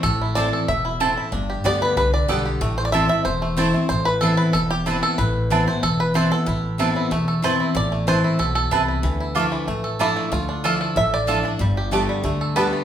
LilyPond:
<<
  \new Staff \with { instrumentName = "Mandolin" } { \time 4/4 \key a \minor \tempo 4 = 187 r4 <c' e' c'' a''>8 r4. <c' e' c'' a''>8 r8 | r4 <b g' d'' g''>8 r4. <b g' d'' g''>8 r8 | r4 <c' e' c'' a''>8 r4. <c' e' c'' a''>8 r8 | r4 <c' e' b' a''>8 r4. <c' e' b' a''>8 r8 |
r4 <c' e' b' a''>8 r4. <c' e' b' a''>8 r8 | r4 <c' e' b' a''>8 r4. <c' e' b' a''>8 r8 | r4 <c' e' b' a''>8 r4. <c' e' b' a''>8 r8 | r4 <f' a' e'' d'''>8 r4. <f' a' e'' d'''>8 r8 |
r4 <f' a' e'' d'''>8 r4. <f' a' e'' d'''>8 r8 | r4 <b g' d'' a''>8 r4. <b g' d'' a''>8 r8 | }
  \new Staff \with { instrumentName = "Five-string banjo" } { \time 4/4 \key a \minor << { a'4 d''4 e''4. r8 | r4 d''8 b'8 b'8 d''8 r4 | r8 c''16 d''16 e''8 e''8 c''4 c''4 | c''8 b'8 a'8 b'8 a'8 g'4 a'8 |
b'4. c''8 a'8 b'8 c''8 a'8~ | a'2 r4 c''4 | d''4 c''4 a'8 a'4.~ | a'4 r2 e'4 |
f'4 a'4 e''8 d''4.~ | d''4 r2 b'4 | } \\ { a8 e'4 a'4 e'8 a'8 e'8 | d'8 g'4. r4 a'8 g'8 | a4. r4 a4 a8 | r2. e'4~ |
e'8 r8 e4. r4. | e'4 a'8 e'8 a8 a'4 e'8~ | e'8 a4 e'4. e'8 e'8 | e8 e'8 a8 e8 a8 a'4 a8~ |
a8 d'4 a'4. a'8 d'8 | g8 g'8 a8 g8 a8 a'4 a8 | } >> }
  \new Staff \with { instrumentName = "Steel-string acoustic guitar" } { \time 4/4 \key a \minor << { r4 <e a c' e'>4 r2 | r4 <d g b g'>4 r4 <d g b g'>4 | r4 <e a c' e'>8 <c' e'>8 r4 <e a c' e'>8 <c' e'>8 | r4 <e b c' e'>4 r4 <e b c' e'>4 |
r4 <e b c' e'>8 <b e'>8 r4 <e b c' e'>8 <b e'>8 | r4 <e b c' e'>4 r4 <e c' e'>4 | r4 <e c' e'>4 r2 | r4 <f a d' e'>4 r4 <f a d' e'>4 |
r4 <f a d' e'>4 r4 <f a d' e'>8 <d' e'>8 | r4 <d g b g'>4 r4 <d g b g'>4 | } \\ { a,2 b,4 a,4 | g,2 d2 | a,2 e,2 | a,2 e,2 |
a,2 e,2 | a,2 e,2 | a,2 b,4 c4 | d2 a,2 |
d2 a,2 | g,2 d2 | } >> }
  \new Staff \with { instrumentName = "Upright bass" } { \clef bass \time 4/4 \key a \minor a,,2 e,,2 | g,,4 d,4 c,4 b,,4 | a,,2 e,,2 | a,,2 e,,2 |
a,,2 e,,2 | a,,2 e,,2 | a,,2 b,,4 c,4 | d,2 a,,2 |
d,2 a,,2 | g,,2 d,2 | }
>>